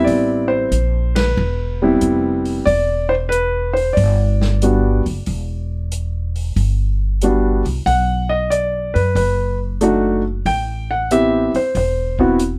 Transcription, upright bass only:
0, 0, Header, 1, 3, 480
1, 0, Start_track
1, 0, Key_signature, 1, "minor"
1, 0, Tempo, 648649
1, 56, Time_signature, 4, 2, 24, 8
1, 9315, End_track
2, 0, Start_track
2, 0, Title_t, "Upright bass"
2, 0, Program_c, 0, 32
2, 51, Note_on_c, 0, 33, 76
2, 505, Note_off_c, 0, 33, 0
2, 530, Note_on_c, 0, 34, 75
2, 984, Note_off_c, 0, 34, 0
2, 1016, Note_on_c, 0, 28, 89
2, 1468, Note_off_c, 0, 28, 0
2, 1493, Note_on_c, 0, 29, 71
2, 1946, Note_off_c, 0, 29, 0
2, 1973, Note_on_c, 0, 28, 76
2, 2907, Note_off_c, 0, 28, 0
2, 2937, Note_on_c, 0, 31, 90
2, 3716, Note_off_c, 0, 31, 0
2, 3745, Note_on_c, 0, 30, 68
2, 3889, Note_off_c, 0, 30, 0
2, 3900, Note_on_c, 0, 28, 78
2, 4832, Note_off_c, 0, 28, 0
2, 4857, Note_on_c, 0, 31, 82
2, 5636, Note_off_c, 0, 31, 0
2, 5660, Note_on_c, 0, 36, 73
2, 5807, Note_off_c, 0, 36, 0
2, 5816, Note_on_c, 0, 35, 81
2, 6595, Note_off_c, 0, 35, 0
2, 6625, Note_on_c, 0, 42, 69
2, 6769, Note_off_c, 0, 42, 0
2, 6773, Note_on_c, 0, 30, 85
2, 7706, Note_off_c, 0, 30, 0
2, 7737, Note_on_c, 0, 33, 78
2, 8513, Note_off_c, 0, 33, 0
2, 8694, Note_on_c, 0, 28, 78
2, 9315, Note_off_c, 0, 28, 0
2, 9315, End_track
3, 0, Start_track
3, 0, Title_t, "Muted upright bass strokes"
3, 8540, Note_on_c, 9, 29, 40
3, 8614, Note_off_c, 9, 29, 0
3, 9315, End_track
0, 0, End_of_file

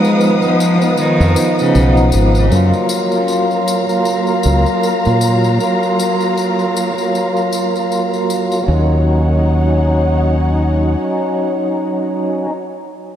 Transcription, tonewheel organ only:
0, 0, Header, 1, 2, 480
1, 0, Start_track
1, 0, Tempo, 769231
1, 1572, Time_signature, 4, 2, 24, 8
1, 8212, End_track
2, 0, Start_track
2, 0, Title_t, "Tonewheel organ"
2, 0, Program_c, 0, 16
2, 0, Note_on_c, 0, 53, 101
2, 0, Note_on_c, 0, 59, 90
2, 0, Note_on_c, 0, 63, 107
2, 468, Note_off_c, 0, 53, 0
2, 477, Note_off_c, 0, 59, 0
2, 487, Note_off_c, 0, 63, 0
2, 490, Note_on_c, 0, 53, 93
2, 506, Note_on_c, 0, 59, 88
2, 522, Note_on_c, 0, 63, 111
2, 1537, Note_off_c, 0, 53, 0
2, 1546, Note_off_c, 0, 59, 0
2, 1554, Note_off_c, 0, 63, 0
2, 1558, Note_on_c, 0, 54, 94
2, 1574, Note_on_c, 0, 58, 86
2, 1593, Note_on_c, 0, 65, 101
2, 2390, Note_off_c, 0, 54, 0
2, 2398, Note_off_c, 0, 58, 0
2, 2407, Note_off_c, 0, 65, 0
2, 2413, Note_on_c, 0, 54, 89
2, 2429, Note_on_c, 0, 58, 86
2, 2448, Note_on_c, 0, 65, 107
2, 3459, Note_off_c, 0, 54, 0
2, 3467, Note_off_c, 0, 58, 0
2, 3477, Note_off_c, 0, 65, 0
2, 3481, Note_on_c, 0, 54, 86
2, 3497, Note_on_c, 0, 58, 81
2, 3514, Note_on_c, 0, 65, 97
2, 4311, Note_off_c, 0, 54, 0
2, 4319, Note_off_c, 0, 58, 0
2, 4328, Note_off_c, 0, 65, 0
2, 4332, Note_on_c, 0, 54, 84
2, 4350, Note_on_c, 0, 58, 79
2, 4366, Note_on_c, 0, 65, 93
2, 5379, Note_off_c, 0, 54, 0
2, 5388, Note_off_c, 0, 58, 0
2, 5390, Note_on_c, 0, 54, 76
2, 5395, Note_off_c, 0, 65, 0
2, 5415, Note_on_c, 0, 61, 65
2, 5438, Note_on_c, 0, 63, 74
2, 7781, Note_off_c, 0, 54, 0
2, 7806, Note_off_c, 0, 61, 0
2, 7819, Note_off_c, 0, 63, 0
2, 8212, End_track
0, 0, End_of_file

